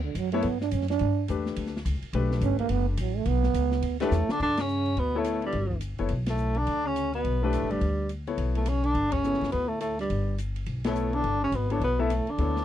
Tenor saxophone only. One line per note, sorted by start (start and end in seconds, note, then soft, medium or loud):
4.02 4.33 A3 loud
4.31 4.41 D4 loud
4.42 4.61 D4 loud
4.60 5.01 C#4 loud
4.99 5.19 B3 medium
5.18 5.44 A3 medium
5.46 5.81 G3 medium
6.29 6.59 A3 medium
6.57 6.88 D4 loud
6.86 7.14 C#4 loud
7.14 7.45 B3 medium
7.44 7.73 A3 medium
7.71 8.10 G3 medium
8.57 8.69 A3 medium
8.68 8.86 C#4 medium
8.84 9.14 D4 loud
9.12 9.51 C#4 loud
9.52 9.70 B3 medium
9.68 9.80 A3 medium
9.81 9.97 A3 medium
10.00 10.36 G3 medium
10.87 11.16 A3 medium
11.14 11.42 D4 loud
11.43 11.57 C#4 loud
11.55 11.73 B3 medium
11.72 11.82 D4 medium
11.84 12.02 B3 medium
12.01 12.32 A3 medium
12.30 12.65 D4 medium